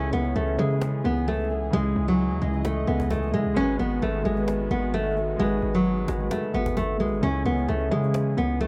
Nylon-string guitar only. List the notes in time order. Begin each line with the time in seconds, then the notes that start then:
Already playing: C#4
0.13 B3
0.36 A3
0.59 G#3
1.05 B3
1.28 A3
1.73 G#3
2.08 F#3
2.42 G#3
2.65 A3
2.87 B3
3.10 A3
3.34 G#3
3.56 C#4
3.79 B3
4.02 A3
4.25 G#3
4.71 B3
4.94 A3
5.39 G#3
5.75 F#3
6.08 G#3
6.31 A3
6.54 B3
6.77 A3
7.00 G#3
7.23 C#4
7.46 B3
7.68 A3
7.92 G#3
8.38 B3
8.61 A3